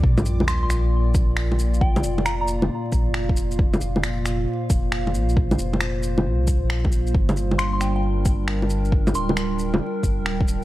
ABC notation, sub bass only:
X:1
M:4/4
L:1/16
Q:"Swing 16ths" 1/4=135
K:Bb
V:1 name="Sub bass" clef=bass
B,,,16- | B,,,2 F,,,6 z2 B,,, F,,,4- F,,,- | F,,,2 F,,,6 z2 F,,,4 B,,,2- | B,,,2 F,,,6 C,,3 B,,,4- B,,, |
G,,,16- | G,,,2 D,,,6 z2 G,,, D,,,4- D,,, |]